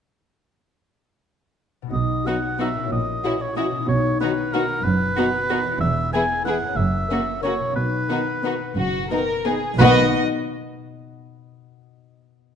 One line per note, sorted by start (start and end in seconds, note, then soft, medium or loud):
1.82 2.94 B2 soft
1.82 2.92 B3 soft
1.87 2.90 D#4 soft
1.87 2.86 F#4 soft
1.92 2.72 B1 medium
1.92 2.73 B2 medium
1.92 2.28 D#5 medium
2.25 2.37 F#3 soft
2.25 2.34 B3 soft
2.25 2.36 D#4 soft
2.25 2.37 F#4 soft
2.25 2.35 F#4 soft
2.25 2.59 F#5 medium
2.58 2.70 F#3 soft
2.58 2.66 B3 soft
2.58 2.68 D#4 soft
2.58 2.70 F#4 soft
2.58 2.68 F#4 soft
2.58 2.92 E5 medium
2.74 3.82 A#2 soft
2.78 3.84 C#4 soft
2.83 3.87 E4 soft
2.87 3.70 A#1 medium
2.87 3.83 F#4 soft
2.92 3.70 A#2 medium
2.92 3.43 D#5 medium
3.24 3.36 E3 soft
3.24 3.33 C#4 soft
3.24 3.33 E4 soft
3.24 3.32 F#4 soft
3.24 3.36 F#4 soft
3.42 3.56 C#5 medium
3.56 3.69 E3 soft
3.56 3.64 C#4 soft
3.56 3.65 E4 soft
3.56 3.65 F#4 soft
3.56 3.69 F#4 soft
3.56 3.88 D#5 medium
3.71 5.75 B2 soft
3.75 5.67 B3 soft
3.80 5.79 D#4 soft
3.85 4.66 B1 medium
3.85 4.66 B2 medium
3.85 5.81 F#4 soft
3.85 4.20 C#5 medium
4.20 4.33 D#3 soft
4.20 4.28 B3 medium
4.20 4.30 D#4 medium
4.20 4.33 F#4 medium
4.20 4.31 F#4 soft
4.20 4.54 B4 medium
4.53 4.65 D#3 soft
4.53 4.61 B3 soft
4.53 4.63 D#4 soft
4.53 4.65 F#4 soft
4.53 4.62 F#4 soft
4.53 4.85 A#4 medium
4.84 5.62 F#1 medium
4.84 5.62 F#2 medium
4.84 5.80 B4 medium
5.17 5.29 D#3 medium
5.17 5.26 B3 soft
5.17 5.26 D#4 soft
5.17 5.25 F#4 medium
5.17 5.29 F#4 soft
5.49 5.61 D#3 soft
5.49 5.57 B3 soft
5.49 5.58 D#4 soft
5.49 5.61 F#4 medium
5.49 5.58 F#4 soft
5.63 6.71 E2 medium
5.68 6.74 B3 soft
5.68 7.75 E4 soft
5.76 6.59 E1 medium
5.76 6.78 G#4 soft
5.81 6.59 E2 medium
5.81 6.12 E5 medium
6.12 6.24 E3 medium
6.12 6.21 B3 soft
6.12 6.22 E4 soft
6.12 6.24 G#4 medium
6.12 6.22 G#4 medium
6.12 6.44 G#5 medium
6.43 6.56 E3 soft
6.43 6.53 B3 soft
6.43 6.55 E4 soft
6.43 6.55 G#4 soft
6.43 6.78 F#5 medium
6.48 6.56 G#4 soft
6.60 7.70 F#2 medium
6.64 7.72 A#3 soft
6.69 7.75 C#4 soft
6.73 7.57 F#1 medium
6.73 7.71 F#4 soft
6.73 7.42 E5 medium
6.78 7.58 F#2 medium
7.09 7.22 C#3 soft
7.09 7.19 A#3 soft
7.09 7.19 C#4 soft
7.09 7.20 F#4 soft
7.09 7.21 A#4 soft
7.41 7.54 C#3 soft
7.41 7.52 A#3 soft
7.41 7.51 C#4 soft
7.41 7.54 A#4 soft
7.41 7.75 C#5 medium
7.45 7.53 F#4 soft
7.59 9.73 B2 soft
7.63 9.78 B3 soft
7.68 9.78 D#4 soft
7.72 8.57 B1 medium
7.72 9.78 F#4 soft
7.72 8.75 B4 medium
7.77 8.58 B2 medium
8.08 8.21 D#3 soft
8.08 8.18 B3 soft
8.08 8.19 D#4 soft
8.08 8.18 F#4 soft
8.08 8.21 B4 soft
8.43 8.55 D#3 soft
8.43 8.51 B3 soft
8.43 8.52 D#4 soft
8.43 8.54 F#4 soft
8.43 8.55 B4 soft
8.77 9.60 F#1 medium
8.77 9.60 F#2 medium
8.77 9.09 F#4 medium
9.10 9.22 D#3 soft
9.10 9.18 B3 soft
9.10 9.20 D#4 soft
9.10 9.44 A#4 medium
9.10 9.24 B4 soft
9.45 9.57 D#3 soft
9.45 9.53 B3 soft
9.45 9.53 D#4 soft
9.45 9.79 G#4 soft
9.45 9.58 B4 soft
9.77 10.16 B1 medium
9.77 10.17 B2 medium
9.77 10.08 D#3 medium
9.77 10.17 B3 medium
9.77 10.17 D#4 medium
9.77 10.17 F#4 medium
9.77 10.09 B4 medium
9.77 10.18 D#5 medium
9.81 10.17 D#5 medium